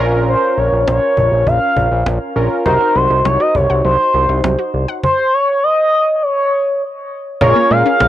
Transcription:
0.00 0.36 A#1 medium
0.00 2.32 C#4 medium
0.00 2.32 F4 medium
0.00 2.32 A#4 medium
0.13 cajon slap soft
0.28 0.59 C5 medium
0.28 cajon slap soft
0.58 0.70 A#1 medium
0.58 0.87 C#5 medium
0.58 cajon slap soft
0.73 0.85 A#1 loud
0.73 cajon slap soft
0.87 1.00 A#1 loud
0.87 1.49 C#5 medium
0.87 cajon slap loud
1.17 1.30 A#1 loud
1.17 cajon bass medium
1.32 1.45 A#1 loud
1.32 cajon slap soft
1.47 1.59 A#1 loud
1.47 2.06 F5 loud
1.47 cajon bass medium
1.77 1.89 A#1 loud
1.77 cajon bass medium
1.91 2.04 A#1 loud
1.91 cajon slap soft
2.06 2.19 A#1 loud
2.06 cajon slap loud
2.36 2.49 A#1 medium
2.36 2.66 C#4 medium
2.36 2.66 F4 medium
2.36 2.66 A#4 medium
2.36 cajon slap soft
2.51 cajon slap soft
2.66 2.78 C2 loud
2.66 2.77 F#3 medium
2.66 4.99 D#4 medium
2.66 4.99 F#4 medium
2.66 2.97 A#4 medium
2.66 4.99 C5 medium
2.66 cajon bass loud
2.81 2.92 C4 medium
2.95 3.08 C2 loud
2.95 3.07 F#3 medium
2.95 3.27 C5 medium
2.95 cajon slap soft
3.10 3.23 C2 medium
3.10 3.22 D#4 medium
3.25 3.38 C2 loud
3.25 3.36 F#3 medium
3.25 3.42 C#5 loud
3.25 cajon slap loud
3.40 3.51 F#4 medium
3.40 3.57 D#5 loud
3.55 3.67 C2 loud
3.55 3.84 C#5 loud
3.55 cajon bass medium
3.70 3.82 C2 medium
3.70 3.81 F#5 medium
3.70 cajon slap soft
3.85 3.97 C2 loud
3.85 3.96 F#3 medium
3.85 4.70 C5 loud
3.85 cajon slap soft
4.14 4.27 C2 loud
4.14 4.25 F#3 medium
4.14 cajon slap soft
4.29 4.42 C2 loud
4.29 4.40 D#4 medium
4.29 cajon slap soft
4.44 4.57 C2 medium
4.44 4.55 F#3 medium
4.44 cajon slap loud
4.59 4.70 F#4 medium
4.74 4.86 C2 medium
4.74 cajon slap soft
4.88 5.00 F#5 medium
4.88 cajon slap soft
5.03 5.35 C5 loud
5.03 cajon bass loud
5.03 cajon slap medium
5.33 5.65 C#5 loud
5.63 6.16 D#5 loud
6.16 6.24 D#5 medium
6.23 6.82 C#5 medium
7.41 7.54 A#1 loud
7.41 7.52 G#3 medium
7.41 8.08 C#4 medium
7.41 8.08 F4 medium
7.41 8.08 G#4 medium
7.41 8.08 A#4 medium
7.41 7.72 C#5 loud
7.41 cajon bass loud
7.56 7.67 A#3 medium
7.71 7.83 A#2 loud
7.71 7.82 G#3 medium
7.71 8.08 F5 loud
7.71 cajon slap soft
7.85 7.97 C#4 medium
7.85 cajon slap soft
8.00 8.08 A#1 loud
8.00 8.08 G#3 medium
8.00 cajon slap loud

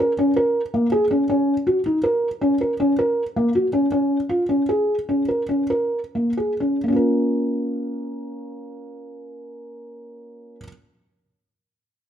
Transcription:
0.00 0.12 A#4 medium
0.19 0.30 C#4 medium
0.36 0.60 A#4 medium
0.74 0.86 A#3 medium
0.92 1.04 G#4 medium
1.11 1.23 C#4 medium
1.30 1.53 C#4 medium
1.67 1.79 F#4 medium
1.86 1.98 D#4 medium
2.03 2.28 A#4 medium
2.41 2.53 C#4 medium
2.61 2.73 A#4 medium
2.80 2.92 C#4 medium
2.99 3.22 A#4 medium
3.36 3.48 A#3 medium
3.55 3.67 F#4 medium
3.73 3.85 C#4 medium
3.92 4.16 C#4 medium
4.29 4.42 F4 medium
4.49 4.61 C#4 medium
4.69 4.94 G#4 medium
5.09 5.22 C#4 soft
5.28 5.42 A#4 soft
5.49 5.63 C#4 medium
5.70 5.98 A#4 medium
6.15 6.29 A#3 soft
6.37 6.52 G#4 soft
6.60 6.75 C#4 medium
6.84 10.55 A#3 soft
6.88 10.60 C#4 soft
6.92 10.64 F4 soft
6.92 10.68 A#4 soft

